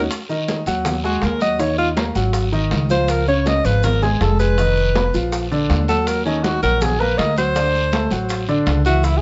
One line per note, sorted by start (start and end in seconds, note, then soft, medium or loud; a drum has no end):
0.11 high bongo medium
0.11 high conga soft
0.11 long guiro medium
0.11 maracas medium
0.29 0.60 D#3 medium
0.29 0.60 D#4 medium
0.29 0.60 D#5 medium
0.29 high bongo soft
0.29 high conga soft
0.29 maracas soft
0.48 high bongo medium
0.48 high conga medium
0.48 short guiro medium
0.48 maracas soft
0.66 1.19 D#2 medium
0.66 0.97 F#3 medium
0.66 0.98 F#4 medium
0.66 0.98 F#5 medium
0.66 high bongo soft
0.66 high conga soft
0.66 short guiro medium
0.66 maracas medium
0.85 high bongo medium
0.85 high conga soft
0.85 low conga medium
0.85 long guiro medium
0.85 maracas medium
1.03 1.34 G#3 medium
1.03 1.25 F#4 medium
1.03 1.35 G#4 medium
1.03 1.35 G#5 medium
1.03 high bongo soft
1.03 high conga soft
1.03 maracas soft
1.22 2.10 D#2 loud
1.22 1.41 A#4 medium
1.22 high bongo medium
1.22 low bongo medium
1.22 high conga medium
1.22 short guiro medium
1.22 maracas soft
1.40 1.56 F#3 medium
1.40 1.57 F#4 medium
1.40 1.62 D#5 loud
1.40 1.57 F#5 medium
1.40 high conga soft
1.40 short guiro medium
1.40 maracas medium
1.59 1.90 D#3 medium
1.59 1.90 D#4 medium
1.59 1.78 C#5 medium
1.59 1.91 D#5 medium
1.59 high bongo medium
1.59 high conga soft
1.59 long guiro medium
1.59 maracas medium
1.78 1.90 F4 medium
1.78 high bongo soft
1.78 high conga soft
1.78 maracas soft
1.97 2.12 A#3 medium
1.97 2.12 A#4 medium
1.97 2.13 A#5 medium
1.97 high bongo medium
1.97 high conga loud
1.97 short guiro medium
1.97 maracas soft
2.15 2.68 G#1 medium
2.15 2.46 F#3 medium
2.15 2.46 F#4 medium
2.15 2.46 F#5 medium
2.15 high bongo soft
2.15 high conga soft
2.15 short guiro medium
2.15 maracas medium
2.33 high bongo medium
2.33 high conga soft
2.33 long guiro medium
2.33 maracas medium
2.52 2.83 D#3 medium
2.52 2.83 D#4 medium
2.52 2.84 D#5 loud
2.52 high conga soft
2.52 maracas soft
2.71 3.59 C#2 medium
2.71 high bongo medium
2.71 low bongo medium
2.71 high conga medium
2.71 short guiro medium
2.71 maracas soft
2.89 3.21 F3 medium
2.89 3.21 F4 medium
2.89 3.11 C5 loud
2.89 3.21 F5 medium
2.89 high bongo soft
2.89 high conga medium
2.89 short guiro medium
2.89 maracas medium
3.08 3.28 A#4 medium
3.08 high bongo medium
3.08 high conga soft
3.08 long guiro medium
3.08 maracas medium
3.27 3.58 C#3 medium
3.27 3.59 C#4 medium
3.27 3.49 C#5 medium
3.27 3.59 C#5 medium
3.27 high bongo soft
3.27 high conga soft
3.27 maracas soft
3.46 3.67 D#5 loud
3.46 high bongo medium
3.46 high conga medium
3.46 short guiro medium
3.46 maracas soft
3.65 4.17 G#1 medium
3.65 3.96 F3 medium
3.65 3.96 F4 medium
3.65 3.86 B4 loud
3.65 3.96 F5 medium
3.65 high bongo soft
3.65 short guiro medium
3.65 maracas medium
3.83 4.03 A#4 medium
3.83 high bongo medium
3.83 high conga soft
3.83 low conga medium
3.83 long guiro medium
3.83 maracas medium
4.02 4.33 G#3 medium
4.02 4.33 G#4 medium
4.02 4.23 G#4 medium
4.02 4.33 G#5 medium
4.02 high bongo soft
4.02 high conga soft
4.02 low conga medium
4.02 maracas soft
4.21 5.08 F1 loud
4.21 4.39 A4 medium
4.21 high bongo medium
4.21 low bongo medium
4.21 high conga medium
4.21 short guiro medium
4.21 maracas soft
4.39 4.55 G#3 medium
4.39 4.55 G#4 medium
4.39 5.29 B4 loud
4.39 4.55 G#5 medium
4.39 high conga soft
4.39 short guiro medium
4.39 maracas medium
4.58 4.89 D#3 medium
4.58 4.89 D#4 medium
4.58 4.89 D#5 medium
4.58 high bongo medium
4.58 high conga soft
4.58 long guiro medium
4.58 maracas medium
4.77 high bongo soft
4.77 high conga soft
4.77 maracas soft
4.95 5.11 B3 medium
4.95 5.11 B4 medium
4.95 5.11 B5 medium
4.95 high bongo medium
4.95 high conga medium
4.95 short guiro medium
4.95 maracas soft
5.14 5.66 A#1 medium
5.14 5.45 F3 medium
5.14 5.45 F4 medium
5.14 5.45 F5 medium
5.14 high bongo soft
5.14 high conga soft
5.14 short guiro medium
5.14 maracas medium
5.32 high bongo medium
5.32 high conga soft
5.32 long guiro medium
5.32 maracas medium
5.51 5.82 D3 loud
5.51 5.82 D4 medium
5.51 5.82 D5 medium
5.51 high conga soft
5.51 maracas soft
5.70 6.57 D#2 loud
5.70 high bongo medium
5.70 low bongo medium
5.70 high conga medium
5.70 short guiro medium
5.70 maracas soft
5.88 6.19 F#3 medium
5.88 6.19 F#4 medium
5.88 6.09 A4 medium
5.88 6.19 F#5 medium
5.88 high bongo soft
5.88 short guiro medium
5.88 maracas medium
6.07 6.25 A#4 medium
6.07 high bongo medium
6.07 high conga soft
6.07 long guiro medium
6.07 maracas medium
6.25 6.56 D#3 medium
6.25 6.45 C#4 medium
6.25 6.56 D#4 medium
6.25 6.57 D#5 medium
6.25 high bongo soft
6.25 high conga soft
6.25 maracas soft
6.43 6.62 F#4 medium
6.43 high bongo medium
6.43 high conga medium
6.43 short guiro medium
6.43 maracas soft
6.63 7.15 A#1 medium
6.63 6.94 F#3 medium
6.63 6.93 F#4 medium
6.63 6.84 A#4 loud
6.63 6.94 F#5 medium
6.63 high bongo soft
6.63 high conga soft
6.63 short guiro medium
6.63 maracas medium
6.81 7.01 G#4 medium
6.81 high bongo medium
6.81 high conga soft
6.81 low conga medium
6.81 long guiro medium
6.81 maracas medium
7.00 7.31 A#3 medium
7.00 7.31 A#4 medium
7.00 7.19 B4 loud
7.00 7.31 A#5 medium
7.00 high bongo soft
7.00 high conga soft
7.00 maracas soft
7.18 8.06 D2 medium
7.18 7.37 D#5 loud
7.18 high bongo medium
7.18 low bongo medium
7.18 high conga medium
7.18 short guiro medium
7.18 maracas soft
7.37 7.53 F#3 medium
7.37 7.53 F#4 medium
7.37 8.27 C5 loud
7.37 7.53 F#5 medium
7.37 high conga soft
7.37 short guiro medium
7.37 maracas medium
7.55 7.86 D3 medium
7.55 7.86 D4 medium
7.55 7.86 D5 medium
7.55 high bongo medium
7.55 high conga soft
7.55 long guiro medium
7.55 maracas medium
7.75 high bongo soft
7.75 high conga soft
7.75 maracas soft
7.92 8.08 A3 medium
7.92 8.08 A4 medium
7.92 8.08 A5 medium
7.92 high bongo medium
7.92 high conga medium
7.92 short guiro medium
7.92 maracas soft
8.11 8.63 A1 medium
8.11 8.42 F#3 medium
8.11 8.42 F#4 medium
8.11 8.42 F#5 medium
8.11 high bongo soft
8.11 short guiro medium
8.11 maracas medium
8.29 high bongo medium
8.29 high conga soft
8.29 long guiro medium
8.29 maracas medium
8.48 8.79 D3 loud
8.48 8.79 D4 loud
8.48 8.79 D5 loud
8.48 high conga soft
8.48 maracas soft
8.66 9.22 C#2 loud
8.66 high bongo medium
8.66 low bongo medium
8.66 high conga medium
8.66 short guiro medium
8.66 maracas soft
8.85 9.16 E3 medium
8.85 9.16 E4 medium
8.85 9.06 F#4 medium
8.85 9.17 E5 medium
8.85 high bongo soft
8.85 short guiro medium
8.85 maracas medium
9.03 9.19 E4 medium
9.03 high bongo medium
9.03 high conga soft
9.03 long guiro medium
9.03 maracas medium
9.17 9.22 G#4 medium